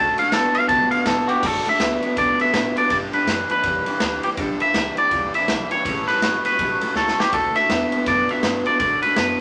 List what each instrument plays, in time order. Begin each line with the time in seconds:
Already playing: upright bass D2, clean electric guitar D3 A3 A5, steel-string acoustic guitar D3 A3 D4 F#4
0.00 steel-string acoustic guitar A4
0.17 clean electric guitar D3 A3 F5, steel-string acoustic guitar F#4 A4, muted upright bass stroke, ride
0.22 steel-string acoustic guitar D4
0.31 upright bass C#2, clean electric guitar D3 B3 A4, steel-string acoustic guitar A3 D4, snare, ride
0.35 steel-string acoustic guitar F#4 A4
0.54 clean electric guitar D3 B3 F5, steel-string acoustic guitar F#4 A4, muted upright bass stroke, ride
0.69 upright bass B1, steel-string acoustic guitar D3 A3 D4 F#4 A4, clean electric guitar D3 B3 A5, kick, ride
0.91 clean electric guitar D3 B3 F5, steel-string acoustic guitar D4 F#4 A4, muted upright bass stroke, ride
1.05 upright bass A1, clean electric guitar D3 B3 A4, steel-string acoustic guitar A3 D4, kick, snare, ride
1.10 steel-string acoustic guitar A4
1.28 clean electric guitar D3 B3 F#4 G4, steel-string acoustic guitar D4 F#4 A4, muted upright bass stroke, ride
1.43 upright bass F#1, steel-string acoustic guitar D3 A3 D4 F#4 A4, clean electric guitar D3 A3 A4, kick, snare, crash
1.65 clean electric guitar D3 A3, steel-string acoustic guitar D4 F#4 A4, muted upright bass stroke, ride
1.69 clean electric guitar E5
1.79 upright bass C#2, clean electric guitar D3 B3, steel-string acoustic guitar A3 D4 F#4, snare, ride
1.83 steel-string acoustic guitar A4
2.02 clean electric guitar D3 B3, steel-string acoustic guitar F#4 A4, muted upright bass stroke, ride
2.06 steel-string acoustic guitar D4
2.17 upright bass D2, clean electric guitar D3 B3 D5, steel-string acoustic guitar D3 A3 D4 F#4 A4, kick, snare, ride
2.39 clean electric guitar D3 B3 E5, steel-string acoustic guitar F#4 A4, ride
2.43 steel-string acoustic guitar D4
2.53 upright bass A2, clean electric guitar D3 B3, steel-string acoustic guitar A3 D4 F#4 A4, snare, ride
2.75 clean electric guitar D3 B3 D5, steel-string acoustic guitar F#4 A4, muted upright bass stroke, ride
2.80 steel-string acoustic guitar D4
2.89 clean electric guitar G2 D3 D5, upright bass G2, steel-string acoustic guitar G3 D4 G4 B4, kick, snare, ride
3.12 clean electric guitar G2 D3 B4, steel-string acoustic guitar D4 G4 B4, ride
3.26 upright bass F#2, clean electric guitar G2 E3, steel-string acoustic guitar G3 D4 G4, snare, ride
3.30 steel-string acoustic guitar B4
3.49 clean electric guitar G2 E3 B4, steel-string acoustic guitar D4 G4 B4, ride
3.63 upright bass E2, clean electric guitar G2 E3, steel-string acoustic guitar G3 D4 G4 B4, kick, ride
3.86 clean electric guitar G2 E3, steel-string acoustic guitar D4 G4 B4, ride
4.00 upright bass D2, clean electric guitar G2 E3, steel-string acoustic guitar G3 D4 G4 B4, snare, ride
4.23 clean electric guitar G2 E3 G4, steel-string acoustic guitar D4 G4 B4, muted upright bass stroke, ride
4.37 upright bass B1, clean electric guitar G2 D3 A4, steel-string acoustic guitar G3 D4 G4 B4, kick, ride
4.59 clean electric guitar G2 D3 E5, steel-string acoustic guitar G4 B4, muted upright bass stroke, ride
4.64 steel-string acoustic guitar D4
4.74 upright bass C#2, clean electric guitar G2 E3, steel-string acoustic guitar G3 D4 G4 B4, snare, ride
4.96 clean electric guitar G2 E3 D5, steel-string acoustic guitar G4 B4, muted upright bass stroke, ride
5.01 steel-string acoustic guitar D4
5.11 upright bass D2, clean electric guitar G2 E3, steel-string acoustic guitar G3 D4 G4 B4, kick, ride
5.34 clean electric guitar G2 E3 E5, steel-string acoustic guitar G4 B4, muted upright bass stroke, ride
5.38 steel-string acoustic guitar D4
5.48 upright bass B1, clean electric guitar G2 E3, steel-string acoustic guitar G3 D4 G4 B4, snare, ride
5.70 clean electric guitar G2 E3 C#5, steel-string acoustic guitar D4 G4 B4, muted upright bass stroke, ride
5.84 upright bass A1, steel-string acoustic guitar A2 E3 G3 C#4 G4 A4, clean electric guitar A2 E3, kick, ride
6.07 clean electric guitar A2 E3 B4, steel-string acoustic guitar G3 C#4 G4 A4, snare, ride
6.21 upright bass G1, clean electric guitar A2 F#3, steel-string acoustic guitar G3 C#4 G4, snare, ride
6.26 steel-string acoustic guitar A4
6.43 clean electric guitar A2 F#3 B4, steel-string acoustic guitar G4 A4, muted upright bass stroke, snare, ride
6.47 steel-string acoustic guitar G3 C#4
6.59 upright bass A1, steel-string acoustic guitar A2 E3 G3 C#4 G4 A4, clean electric guitar A2 F#3, kick, ride
6.81 clean electric guitar A2 F#3, steel-string acoustic guitar G3 C#4 G4 A4, muted upright bass stroke, ride
6.94 upright bass C#2, clean electric guitar A2 F#3 A4, steel-string acoustic guitar G3 C#4 G4 A4, snare
7.08 snare
7.17 clean electric guitar A2 F#3 G4, steel-string acoustic guitar G3 C#4 G4 A4, muted upright bass stroke, snare
7.33 upright bass D2, clean electric guitar D3 A3 A4, steel-string acoustic guitar D3 A3 D4 F#4 A4, kick, ride
7.55 clean electric guitar D3 A3 E5, steel-string acoustic guitar D4 F#4 A4, snare, ride
7.69 upright bass E2, clean electric guitar D3 B3, steel-string acoustic guitar A3 D4 F#4, snare, ride
7.92 clean electric guitar D3 B3, steel-string acoustic guitar D4 F#4 A4, ride
8.06 upright bass F#2, steel-string acoustic guitar D3 A3 D4 F#4 A4, clean electric guitar D3 B3 D5, kick, snare, ride
8.28 clean electric guitar D3 B3 E5, steel-string acoustic guitar D4 F#4 A4, ride
8.43 upright bass G2, clean electric guitar D3 B3, steel-string acoustic guitar A3 D4 F#4, snare, ride
8.47 steel-string acoustic guitar A4
8.65 clean electric guitar D3 B3 D5, steel-string acoustic guitar D4 F#4 A4, muted upright bass stroke, ride
8.79 upright bass A2, steel-string acoustic guitar D3 A3 D4 F#4 A4, clean electric guitar D3 A3 D5, kick, ride
9.01 clean electric guitar D3 A3 B4, steel-string acoustic guitar D4 F#4 A4, muted upright bass stroke, ride
9.15 upright bass F#2, clean electric guitar D3 B3, steel-string acoustic guitar A3 D4 F#4 A4, snare, ride